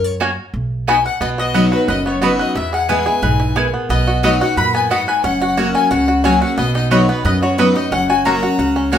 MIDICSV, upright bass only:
0, 0, Header, 1, 2, 480
1, 0, Start_track
1, 0, Key_signature, 5, "major"
1, 0, Tempo, 335196
1, 1737, Time_signature, 4, 2, 24, 8
1, 12859, End_track
2, 0, Start_track
2, 0, Title_t, "Upright bass"
2, 0, Program_c, 0, 32
2, 0, Note_on_c, 0, 42, 97
2, 528, Note_off_c, 0, 42, 0
2, 768, Note_on_c, 0, 35, 100
2, 1490, Note_off_c, 0, 35, 0
2, 1728, Note_on_c, 0, 35, 94
2, 2451, Note_off_c, 0, 35, 0
2, 2693, Note_on_c, 0, 30, 90
2, 3414, Note_off_c, 0, 30, 0
2, 3658, Note_on_c, 0, 40, 95
2, 4378, Note_off_c, 0, 40, 0
2, 4614, Note_on_c, 0, 35, 91
2, 5336, Note_off_c, 0, 35, 0
2, 5575, Note_on_c, 0, 35, 96
2, 6297, Note_off_c, 0, 35, 0
2, 6541, Note_on_c, 0, 42, 85
2, 7260, Note_off_c, 0, 42, 0
2, 7501, Note_on_c, 0, 30, 95
2, 8220, Note_off_c, 0, 30, 0
2, 8463, Note_on_c, 0, 37, 88
2, 9181, Note_off_c, 0, 37, 0
2, 9417, Note_on_c, 0, 35, 91
2, 10137, Note_off_c, 0, 35, 0
2, 10375, Note_on_c, 0, 42, 91
2, 11096, Note_off_c, 0, 42, 0
2, 11332, Note_on_c, 0, 30, 99
2, 12054, Note_off_c, 0, 30, 0
2, 12295, Note_on_c, 0, 37, 89
2, 12859, Note_off_c, 0, 37, 0
2, 12859, End_track
0, 0, End_of_file